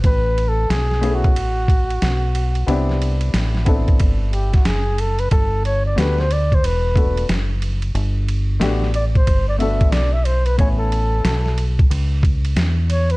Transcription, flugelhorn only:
0, 0, Header, 1, 2, 480
1, 0, Start_track
1, 0, Key_signature, 1, "major"
1, 0, Tempo, 659341
1, 31, Time_signature, 4, 2, 24, 8
1, 9586, End_track
2, 0, Start_track
2, 0, Title_t, "Flugelhorn"
2, 0, Program_c, 0, 56
2, 42, Note_on_c, 0, 71, 109
2, 354, Note_on_c, 0, 69, 103
2, 365, Note_off_c, 0, 71, 0
2, 515, Note_on_c, 0, 68, 92
2, 526, Note_off_c, 0, 69, 0
2, 839, Note_on_c, 0, 66, 94
2, 850, Note_off_c, 0, 68, 0
2, 2035, Note_off_c, 0, 66, 0
2, 3157, Note_on_c, 0, 67, 70
2, 3292, Note_off_c, 0, 67, 0
2, 3309, Note_on_c, 0, 66, 75
2, 3399, Note_on_c, 0, 68, 85
2, 3410, Note_off_c, 0, 66, 0
2, 3642, Note_on_c, 0, 69, 81
2, 3653, Note_off_c, 0, 68, 0
2, 3784, Note_on_c, 0, 71, 88
2, 3795, Note_off_c, 0, 69, 0
2, 3866, Note_off_c, 0, 71, 0
2, 3871, Note_on_c, 0, 69, 108
2, 4094, Note_off_c, 0, 69, 0
2, 4119, Note_on_c, 0, 73, 101
2, 4253, Note_off_c, 0, 73, 0
2, 4269, Note_on_c, 0, 74, 92
2, 4363, Note_on_c, 0, 71, 95
2, 4374, Note_off_c, 0, 74, 0
2, 4514, Note_on_c, 0, 72, 99
2, 4525, Note_off_c, 0, 71, 0
2, 4608, Note_on_c, 0, 74, 98
2, 4618, Note_off_c, 0, 72, 0
2, 4766, Note_on_c, 0, 72, 108
2, 4777, Note_off_c, 0, 74, 0
2, 4847, Note_on_c, 0, 71, 92
2, 4858, Note_off_c, 0, 72, 0
2, 5319, Note_off_c, 0, 71, 0
2, 6521, Note_on_c, 0, 74, 100
2, 6585, Note_off_c, 0, 74, 0
2, 6674, Note_on_c, 0, 72, 96
2, 6890, Note_off_c, 0, 72, 0
2, 6907, Note_on_c, 0, 74, 99
2, 6981, Note_off_c, 0, 74, 0
2, 6985, Note_on_c, 0, 76, 94
2, 7220, Note_on_c, 0, 74, 95
2, 7231, Note_off_c, 0, 76, 0
2, 7376, Note_on_c, 0, 76, 102
2, 7387, Note_off_c, 0, 74, 0
2, 7465, Note_on_c, 0, 72, 85
2, 7476, Note_off_c, 0, 76, 0
2, 7614, Note_on_c, 0, 71, 102
2, 7625, Note_off_c, 0, 72, 0
2, 7708, Note_off_c, 0, 71, 0
2, 7712, Note_on_c, 0, 73, 93
2, 7778, Note_off_c, 0, 73, 0
2, 7850, Note_on_c, 0, 69, 88
2, 8545, Note_off_c, 0, 69, 0
2, 9402, Note_on_c, 0, 73, 95
2, 9549, Note_on_c, 0, 71, 107
2, 9560, Note_off_c, 0, 73, 0
2, 9586, Note_off_c, 0, 71, 0
2, 9586, End_track
0, 0, End_of_file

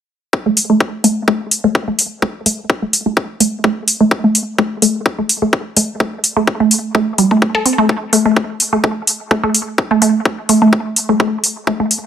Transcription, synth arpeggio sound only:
0, 0, Header, 1, 2, 480
1, 0, Start_track
1, 0, Key_signature, 0, "minor"
1, 0, Tempo, 472441
1, 339, Time_signature, 4, 2, 24, 8
1, 12259, End_track
2, 0, Start_track
2, 0, Title_t, "Synth arpeggio sound"
2, 0, Program_c, 0, 84
2, 467, Note_on_c, 0, 57, 74
2, 495, Note_off_c, 0, 57, 0
2, 708, Note_on_c, 0, 57, 74
2, 777, Note_off_c, 0, 57, 0
2, 1057, Note_on_c, 0, 57, 73
2, 1090, Note_off_c, 0, 57, 0
2, 1299, Note_on_c, 0, 57, 79
2, 1379, Note_off_c, 0, 57, 0
2, 1668, Note_on_c, 0, 57, 76
2, 1695, Note_off_c, 0, 57, 0
2, 1908, Note_on_c, 0, 57, 73
2, 1976, Note_off_c, 0, 57, 0
2, 2258, Note_on_c, 0, 57, 83
2, 2290, Note_off_c, 0, 57, 0
2, 2499, Note_on_c, 0, 57, 75
2, 2579, Note_off_c, 0, 57, 0
2, 2869, Note_on_c, 0, 57, 73
2, 2896, Note_off_c, 0, 57, 0
2, 3109, Note_on_c, 0, 57, 74
2, 3177, Note_off_c, 0, 57, 0
2, 3458, Note_on_c, 0, 57, 75
2, 3491, Note_off_c, 0, 57, 0
2, 3700, Note_on_c, 0, 57, 83
2, 3779, Note_off_c, 0, 57, 0
2, 4070, Note_on_c, 0, 57, 73
2, 4096, Note_off_c, 0, 57, 0
2, 4308, Note_on_c, 0, 57, 74
2, 4376, Note_off_c, 0, 57, 0
2, 4658, Note_on_c, 0, 57, 75
2, 4691, Note_off_c, 0, 57, 0
2, 4899, Note_on_c, 0, 57, 77
2, 4979, Note_off_c, 0, 57, 0
2, 5269, Note_on_c, 0, 57, 74
2, 5296, Note_off_c, 0, 57, 0
2, 5508, Note_on_c, 0, 57, 74
2, 5576, Note_off_c, 0, 57, 0
2, 5859, Note_on_c, 0, 57, 72
2, 5891, Note_off_c, 0, 57, 0
2, 6097, Note_on_c, 0, 57, 82
2, 6178, Note_off_c, 0, 57, 0
2, 6468, Note_on_c, 0, 57, 77
2, 6495, Note_off_c, 0, 57, 0
2, 6708, Note_on_c, 0, 57, 75
2, 6777, Note_off_c, 0, 57, 0
2, 7059, Note_on_c, 0, 57, 78
2, 7091, Note_off_c, 0, 57, 0
2, 7300, Note_on_c, 0, 55, 75
2, 7331, Note_off_c, 0, 55, 0
2, 7430, Note_on_c, 0, 57, 76
2, 7456, Note_off_c, 0, 57, 0
2, 7668, Note_on_c, 0, 69, 101
2, 7713, Note_off_c, 0, 69, 0
2, 7778, Note_on_c, 0, 60, 71
2, 7832, Note_off_c, 0, 60, 0
2, 7908, Note_on_c, 0, 57, 98
2, 7976, Note_off_c, 0, 57, 0
2, 8259, Note_on_c, 0, 57, 74
2, 8291, Note_off_c, 0, 57, 0
2, 8387, Note_on_c, 0, 57, 77
2, 8456, Note_off_c, 0, 57, 0
2, 8867, Note_on_c, 0, 57, 75
2, 8895, Note_off_c, 0, 57, 0
2, 8978, Note_on_c, 0, 57, 77
2, 9058, Note_off_c, 0, 57, 0
2, 9458, Note_on_c, 0, 57, 80
2, 9491, Note_off_c, 0, 57, 0
2, 9587, Note_on_c, 0, 57, 78
2, 9656, Note_off_c, 0, 57, 0
2, 10068, Note_on_c, 0, 57, 78
2, 10096, Note_off_c, 0, 57, 0
2, 10179, Note_on_c, 0, 57, 74
2, 10259, Note_off_c, 0, 57, 0
2, 10659, Note_on_c, 0, 57, 76
2, 10691, Note_off_c, 0, 57, 0
2, 10788, Note_on_c, 0, 57, 74
2, 10856, Note_off_c, 0, 57, 0
2, 11268, Note_on_c, 0, 57, 73
2, 11296, Note_off_c, 0, 57, 0
2, 11377, Note_on_c, 0, 57, 82
2, 11458, Note_off_c, 0, 57, 0
2, 11858, Note_on_c, 0, 57, 85
2, 11890, Note_off_c, 0, 57, 0
2, 11988, Note_on_c, 0, 57, 77
2, 12057, Note_off_c, 0, 57, 0
2, 12259, End_track
0, 0, End_of_file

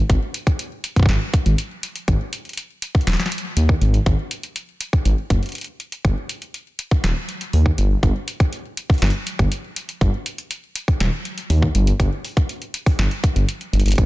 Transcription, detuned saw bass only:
0, 0, Header, 1, 2, 480
1, 0, Start_track
1, 0, Tempo, 495868
1, 93, Time_signature, 4, 2, 24, 8
1, 13608, End_track
2, 0, Start_track
2, 0, Title_t, "Detuned saw bass"
2, 0, Program_c, 0, 39
2, 93, Note_on_c, 0, 32, 100
2, 176, Note_off_c, 0, 32, 0
2, 1054, Note_on_c, 0, 32, 97
2, 1136, Note_off_c, 0, 32, 0
2, 1413, Note_on_c, 0, 32, 103
2, 1496, Note_off_c, 0, 32, 0
2, 2013, Note_on_c, 0, 32, 98
2, 2096, Note_off_c, 0, 32, 0
2, 2973, Note_on_c, 0, 27, 92
2, 3056, Note_off_c, 0, 27, 0
2, 3452, Note_on_c, 0, 39, 93
2, 3619, Note_off_c, 0, 39, 0
2, 3692, Note_on_c, 0, 32, 85
2, 3858, Note_off_c, 0, 32, 0
2, 3932, Note_on_c, 0, 32, 96
2, 4016, Note_off_c, 0, 32, 0
2, 4892, Note_on_c, 0, 32, 92
2, 4976, Note_off_c, 0, 32, 0
2, 5132, Note_on_c, 0, 30, 99
2, 5216, Note_off_c, 0, 30, 0
2, 5853, Note_on_c, 0, 31, 93
2, 5936, Note_off_c, 0, 31, 0
2, 6813, Note_on_c, 0, 27, 92
2, 6896, Note_off_c, 0, 27, 0
2, 7294, Note_on_c, 0, 39, 91
2, 7459, Note_off_c, 0, 39, 0
2, 7533, Note_on_c, 0, 31, 88
2, 7699, Note_off_c, 0, 31, 0
2, 7772, Note_on_c, 0, 31, 95
2, 7856, Note_off_c, 0, 31, 0
2, 8732, Note_on_c, 0, 31, 99
2, 8815, Note_off_c, 0, 31, 0
2, 9092, Note_on_c, 0, 31, 102
2, 9176, Note_off_c, 0, 31, 0
2, 9691, Note_on_c, 0, 31, 96
2, 9775, Note_off_c, 0, 31, 0
2, 10652, Note_on_c, 0, 27, 84
2, 10735, Note_off_c, 0, 27, 0
2, 11131, Note_on_c, 0, 39, 88
2, 11298, Note_off_c, 0, 39, 0
2, 11372, Note_on_c, 0, 31, 90
2, 11538, Note_off_c, 0, 31, 0
2, 11613, Note_on_c, 0, 31, 99
2, 11696, Note_off_c, 0, 31, 0
2, 12572, Note_on_c, 0, 31, 99
2, 12656, Note_off_c, 0, 31, 0
2, 12932, Note_on_c, 0, 31, 103
2, 13015, Note_off_c, 0, 31, 0
2, 13292, Note_on_c, 0, 31, 100
2, 13376, Note_off_c, 0, 31, 0
2, 13412, Note_on_c, 0, 31, 95
2, 13496, Note_off_c, 0, 31, 0
2, 13533, Note_on_c, 0, 32, 95
2, 13608, Note_off_c, 0, 32, 0
2, 13608, End_track
0, 0, End_of_file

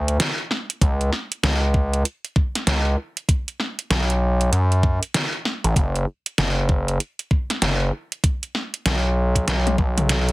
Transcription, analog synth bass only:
0, 0, Header, 1, 2, 480
1, 0, Start_track
1, 0, Key_signature, 2, "minor"
1, 0, Tempo, 618557
1, 633, Time_signature, 4, 2, 24, 8
1, 8009, End_track
2, 0, Start_track
2, 0, Title_t, "Analog synth bass"
2, 0, Program_c, 0, 38
2, 0, Note_on_c, 0, 38, 97
2, 138, Note_off_c, 0, 38, 0
2, 632, Note_on_c, 0, 37, 99
2, 858, Note_off_c, 0, 37, 0
2, 1112, Note_on_c, 0, 37, 100
2, 1578, Note_off_c, 0, 37, 0
2, 2071, Note_on_c, 0, 37, 101
2, 2297, Note_off_c, 0, 37, 0
2, 3029, Note_on_c, 0, 35, 97
2, 3496, Note_off_c, 0, 35, 0
2, 3508, Note_on_c, 0, 42, 97
2, 3875, Note_off_c, 0, 42, 0
2, 4379, Note_on_c, 0, 33, 102
2, 4457, Note_off_c, 0, 33, 0
2, 4470, Note_on_c, 0, 30, 100
2, 4697, Note_off_c, 0, 30, 0
2, 4954, Note_on_c, 0, 30, 99
2, 5419, Note_off_c, 0, 30, 0
2, 5912, Note_on_c, 0, 30, 101
2, 6138, Note_off_c, 0, 30, 0
2, 6872, Note_on_c, 0, 35, 96
2, 7338, Note_off_c, 0, 35, 0
2, 7352, Note_on_c, 0, 35, 100
2, 7578, Note_off_c, 0, 35, 0
2, 7592, Note_on_c, 0, 35, 100
2, 8009, Note_off_c, 0, 35, 0
2, 8009, End_track
0, 0, End_of_file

